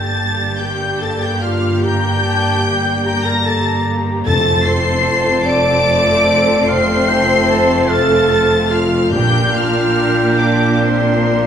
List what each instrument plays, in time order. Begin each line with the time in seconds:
Already playing: double bass section G1, cello section G2, french horn section A#3 D4, viola section A#3 G4, clarinet A4, oboe G5, violin section A5 A6
0.59 clarinet G4, violin section G5 G6
1.00 clarinet A4, violin section A5 A6
1.20 clarinet G4, violin section G5 G6
1.42 clarinet F4, violin section F5 F6
1.82 clarinet G4, violin section G5 G6, oboe A#5
2.24 oboe A5
2.64 oboe G5
3.04 clarinet G4, violin section G5 G6, oboe A#5
3.23 clarinet A#4, violin section A#5 A#6
3.45 clarinet A4, violin section A5 A6
4.25 double bass section F1, cello section F2, timpani F2, french horn section A3 C4, viola section C4 A4, clarinet A4, violin section A5 A6, oboe A5
4.65 clarinet C5, violin section C6 C7
5.46 clarinet D5, violin section D6 D7
6.67 clarinet C5, oboe F5, violin section C6 C7
7.08 oboe G5
7.50 oboe A5
7.89 clarinet A4, oboe F5, violin section A5 A6
8.70 clarinet F4, violin section F5 F6
9.12 double bass section A#1, timpani A#2, cello section A#2, french horn section A#3 D5, viola section D4 A#4, clarinet G4, violin section G5 G6, oboe G5
9.52 clarinet F4, violin section F5 F6
10.38 clarinet D4, violin section D5 D6
10.79 clarinet C4, violin section C5 C6